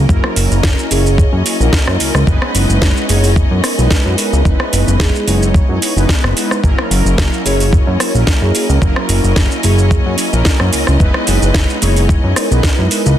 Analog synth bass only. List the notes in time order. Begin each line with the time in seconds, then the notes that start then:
0.09 F#1
0.36 F#1
0.51 F#1
0.64 F#1
0.91 F#1
1.33 F#2
1.60 A#1
1.87 F#2
2.00 C#2
2.15 C#2
2.27 F#1
2.55 F#1
2.69 F#1
2.82 F#1
3.09 F#1
3.51 F#2
3.79 B1
4.06 F#2
4.33 C#2
4.45 F#1
4.73 F#1
4.87 F#1
5.27 F#1
5.69 F#2
5.96 F#1
6.24 F#1
6.64 F#1
6.91 F#1
7.05 F#1
7.18 F#1
7.45 F#1
7.87 F#2
8.15 A#1
8.42 F#2
8.69 C#2
8.82 F#1
9.09 F#1
9.24 F#1
9.36 F#1
9.64 F#1
10.06 F#2
10.33 A#1
10.61 F#2
10.73 C#2
10.88 C#2
11.00 F#1
11.28 F#1
11.42 F#1
11.55 F#1
11.82 F#1
12.24 F#2
12.51 B1
12.78 F#2
13.06 C#2